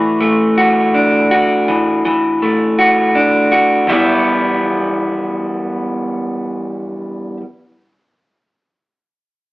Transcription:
0.00 1.67 E3 medium
0.00 3.85 E3 soft
0.00 3.85 A3 soft
0.00 3.85 F#4 soft
0.00 3.85 D5 soft
0.21 2.05 A3 soft
0.58 1.30 F#4 soft
0.94 2.78 D4 soft
1.31 2.77 F#4 soft
1.68 2.04 E3 soft
2.05 3.88 E3 soft
2.42 3.89 A3 soft
2.79 3.51 F#4 soft
3.15 3.89 D4 soft
3.52 3.89 F#4 soft
3.87 7.39 E2 medium
3.87 7.40 B2 soft
3.87 7.41 E3 medium
3.87 7.41 G3 medium
3.87 7.36 B3 soft
3.87 7.42 B3 medium
3.87 7.37 G4 soft
3.87 7.36 E5 soft
3.91 7.43 E4 medium

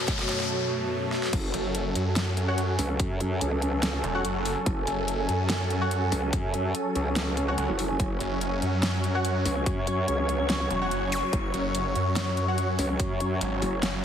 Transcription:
0.00 1.29 F#2 medium
0.00 1.30 B2 medium
0.00 1.29 A3 medium
0.00 0.50 F#4 medium
0.00 0.50 C#5 medium
0.00 0.50 A5 medium
0.00 riser medium
0.08 kick loud
0.08 snare loud
0.08 closed hi-hat medium
0.19 snare medium
0.29 snare loud
0.29 closed hi-hat medium
0.40 snare medium
1.12 snare medium
1.23 snare medium
1.33 1.52 F#1 medium
1.33 14.05 F#3 medium
1.33 14.05 C#4 medium
1.33 7.98 A4 loud
1.33 kick loud
1.33 closed hi-hat medium
1.33 crash loud
1.49 8.17 G#5 medium
1.54 1.94 F#1 loud
1.54 closed hi-hat medium
1.75 closed hi-hat medium
1.95 2.77 F#2 loud
1.95 closed hi-hat medium
2.16 snare loud
2.16 closed hi-hat medium
2.37 closed hi-hat medium
2.48 4.12 F#4 medium
2.48 4.12 C#5 medium
2.48 4.12 F#5 medium
2.58 closed hi-hat medium
2.79 2.98 C#2 loud
2.79 open hi-hat loud
3.00 3.40 F#2 medium
3.00 kick loud
3.00 closed hi-hat medium
3.20 closed hi-hat medium
3.41 4.02 C#2 loud
3.41 closed hi-hat medium
3.62 closed hi-hat medium
3.83 snare loud
3.83 closed hi-hat medium
4.04 4.23 E1 loud
4.04 closed hi-hat medium
4.15 5.79 F#4 medium
4.15 5.79 C#5 medium
4.15 5.79 F#5 medium
4.25 4.55 F#1 loud
4.25 closed hi-hat medium
4.45 open hi-hat medium
4.66 4.86 F#1 loud
4.66 kick loud
4.66 closed hi-hat medium
4.87 5.27 F#1 medium
4.87 closed hi-hat medium
5.08 closed hi-hat medium
5.29 6.11 F#2 loud
5.29 closed hi-hat medium
5.50 snare loud
5.50 closed hi-hat medium
5.70 closed hi-hat medium
5.81 7.45 F#4 medium
5.81 7.45 C#5 medium
5.81 7.45 F#5 medium
5.91 closed hi-hat medium
6.12 6.31 C#2 loud
6.12 open hi-hat medium
6.33 6.73 F#2 medium
6.33 kick loud
6.33 closed hi-hat medium
6.54 closed hi-hat medium
6.75 closed hi-hat medium
6.95 7.56 C#2 loud
6.95 closed hi-hat medium
7.16 snare loud
7.16 closed hi-hat medium
7.37 closed hi-hat medium
7.48 9.12 F#4 medium
7.48 9.12 C#5 medium
7.48 9.12 F#5 medium
7.58 7.67 C#2 medium
7.58 closed hi-hat medium
7.69 7.98 F#1 loud
7.79 open hi-hat medium
8.00 8.19 F#1 medium
8.00 14.05 C#5 loud
8.00 kick loud
8.00 closed hi-hat medium
8.15 14.05 C#6 medium
8.20 8.61 F#1 medium
8.20 closed hi-hat medium
8.41 closed hi-hat medium
8.62 9.44 F#2 loud
8.62 closed hi-hat medium
8.83 snare loud
8.83 closed hi-hat medium
9.04 closed hi-hat soft
9.15 10.79 F#4 medium
9.15 10.79 C#5 medium
9.15 10.79 F#5 medium
9.25 closed hi-hat medium
9.45 9.65 C#2 medium
9.45 open hi-hat medium
9.66 10.06 F#2 medium
9.66 kick loud
9.66 closed hi-hat medium
9.87 closed hi-hat medium
10.08 10.69 C#2 loud
10.08 closed hi-hat medium
10.29 closed hi-hat medium
10.50 snare loud
10.50 closed hi-hat medium
10.71 10.90 E1 loud
10.71 closed hi-hat soft
10.81 12.45 F#4 medium
10.81 12.45 C#5 medium
10.81 12.45 F#5 medium
10.91 11.21 F#1 medium
10.91 closed hi-hat medium
11.12 open hi-hat medium
11.12 zap medium
11.33 11.52 F#1 loud
11.33 kick loud
11.33 closed hi-hat medium
11.54 11.94 F#1 loud
11.54 closed hi-hat medium
11.75 closed hi-hat medium
11.95 12.77 F#2 loud
11.95 closed hi-hat medium
12.16 snare loud
12.16 closed hi-hat medium
12.37 closed hi-hat soft
12.48 14.03 F#4 medium
12.48 14.03 C#5 medium
12.48 14.03 F#5 medium
12.58 closed hi-hat medium
12.79 12.98 C#2 loud
12.79 open hi-hat medium
13.00 13.40 F#2 loud
13.00 kick loud
13.00 closed hi-hat medium
13.20 closed hi-hat medium
13.41 13.61 G#1 loud
13.41 closed hi-hat medium
13.62 13.81 F#1 loud
13.62 open hi-hat medium
13.83 14.05 F#1 loud
13.83 snare loud
13.83 closed hi-hat medium

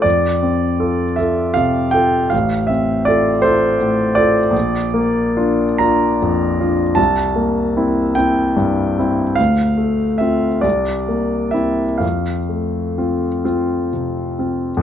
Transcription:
0.02 2.28 F2 soft
0.02 1.17 D5 medium
0.43 1.03 C4 soft
0.80 1.14 F4 soft
0.80 1.15 A4 soft
1.16 1.53 F4 soft
1.16 1.53 A4 soft
1.16 1.55 E5 soft
1.54 2.16 C3 soft
1.54 1.93 F5 medium
1.91 2.28 F4 soft
1.91 2.28 A4 soft
1.91 2.30 G5 medium
2.30 4.50 A1 soft
2.30 2.69 F5 medium
2.67 3.29 C4 soft
2.67 3.06 E5 medium
3.05 3.40 F4 soft
3.05 3.41 A4 soft
3.05 3.43 D5 medium
3.42 3.76 F4 soft
3.42 3.76 A4 soft
3.42 4.15 C5 medium
3.80 4.39 A2 soft
4.15 4.51 F4 soft
4.15 4.51 A4 soft
4.15 5.80 D5 medium
4.51 6.92 A#1 soft
4.94 5.63 A#3 soft
5.37 5.76 D4 soft
5.37 5.76 F4 soft
5.78 6.17 D4 soft
5.78 6.17 F4 soft
5.78 6.97 A#5 medium
6.22 6.83 F2 soft
6.60 6.94 D4 soft
6.60 6.95 F4 soft
6.95 9.34 C2 soft
6.95 8.16 A5 medium
7.36 8.01 A#3 soft
7.77 8.13 C4 soft
7.77 8.13 E4 soft
8.15 8.54 C4 soft
8.15 8.54 E4 soft
8.15 8.97 G5 medium
8.57 9.22 G2 soft
8.99 9.35 C4 soft
8.99 9.35 E4 soft
9.35 10.59 D2 soft
9.35 10.18 F5 medium
9.78 10.45 A3 soft
10.18 10.60 C4 soft
10.18 10.60 F4 soft
10.18 10.63 E5 medium
10.61 11.97 C2 soft
10.61 11.53 D5 medium
11.09 11.82 A#3 soft
11.51 11.97 C4 soft
11.51 11.97 E4 soft
11.51 12.00 E5 soft
11.98 14.76 F2 soft
11.98 13.44 F5 soft
12.49 13.26 A3 soft
12.98 13.41 C4 soft
12.98 13.41 F4 soft
13.45 13.88 C4 soft
13.45 13.89 F4 soft
13.93 14.68 C3 soft
14.39 14.80 C4 soft
14.39 14.80 F4 soft
14.77 14.82 F2 soft

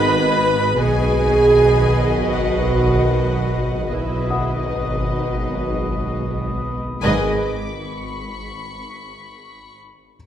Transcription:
0.00 0.75 G#1 medium
0.00 0.75 G#2 medium
0.00 0.62 B2 loud
0.00 0.62 D#3 medium
0.00 0.60 B3 loud
0.00 0.60 D#4 loud
0.00 0.75 B4 medium
0.00 0.80 B4 loud
0.00 0.75 D#5 medium
0.00 0.75 B5 medium
0.00 0.76 B5 loud
0.00 0.36 D#6 medium
0.00 0.37 G#6 medium
0.77 3.87 G#1 medium
0.77 3.87 B1 medium
0.77 3.87 B2 medium
0.77 3.87 D#3 medium
0.77 3.86 B3 medium
0.77 3.86 F#4 medium
0.77 2.36 G#4 loud
0.77 3.87 B4 medium
0.77 3.87 D#5 medium
0.77 2.35 G#5 loud
0.77 3.87 B5 medium
2.35 3.91 F#4 medium
2.35 3.91 F#5 medium
3.90 6.98 G#1 medium
3.90 6.79 B1 medium
3.90 6.66 B2 medium
3.90 6.78 B2 medium
3.90 6.66 F#3 medium
3.90 6.66 B3 medium
3.90 4.68 E4 medium
3.90 6.66 F#4 medium
3.90 6.78 B4 medium
3.90 6.99 B4 soft
3.90 6.78 D#5 medium
3.90 4.67 E5 medium
3.90 6.98 B5 soft
3.90 6.99 D#6 soft
4.30 6.60 F#5 soft
4.30 6.60 D#6 soft
4.68 6.25 D#4 medium
4.68 6.21 D#5 soft
7.01 7.46 G#1 medium
7.01 7.46 G#2 medium
7.01 7.38 G#2 medium
7.01 7.38 D#3 medium
7.01 7.37 B3 medium
7.01 7.38 G#4 medium
7.01 7.47 G#4 medium
7.01 7.46 B4 medium
7.01 7.47 B4 medium
7.01 7.46 D#5 medium
7.01 7.47 D#5 medium
7.01 7.46 G#5 medium
7.01 7.46 B5 medium
7.01 9.72 B5 medium
7.01 7.87 D6 medium
7.80 7.87 C#6 medium
7.87 8.15 C#6 medium

